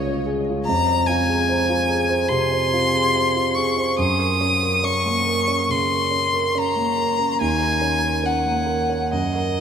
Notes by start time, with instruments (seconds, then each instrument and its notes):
Already playing: grand piano C#2 C#4 F4 G#4, violin C#5
0.07 grand piano C#4
0.26 grand piano G#4
0.50 grand piano F4
0.65 grand piano F2, violin A#5
0.89 grand piano C5
1.06 grand piano F4, violin G#5
1.29 grand piano G#4
1.49 grand piano C5
1.69 grand piano F4
1.89 grand piano G#4
2.09 grand piano C5
2.28 grand piano C3, violin C6
2.52 grand piano C5
2.73 grand piano F4
2.93 grand piano G#4
3.15 grand piano C5
3.35 grand piano F4
3.55 grand piano G#4, violin C#6
3.77 grand piano C5
3.99 grand piano F#2, violin D#6
4.19 grand piano A#4
4.41 grand piano C#4
4.63 grand piano A#4
4.84 grand piano C#4, violin C#6
5.06 grand piano A#3
5.26 grand piano A#4
5.48 grand piano C#4
5.69 grand piano C#3, violin C6
5.89 grand piano A#4
6.11 grand piano C#4
6.33 grand piano A#4
6.55 grand piano C#4, violin A#5
6.76 grand piano A#3
6.97 grand piano A#4
7.19 grand piano C#4
7.41 grand piano D#2, violin G#5
7.61 grand piano A#4
7.81 grand piano C#4
8.24 grand piano C#4, violin F#5
8.46 grand piano A#3
8.67 grand piano A#4
8.89 grand piano C#4
9.13 grand piano F#2, violin D#5
9.35 grand piano A#4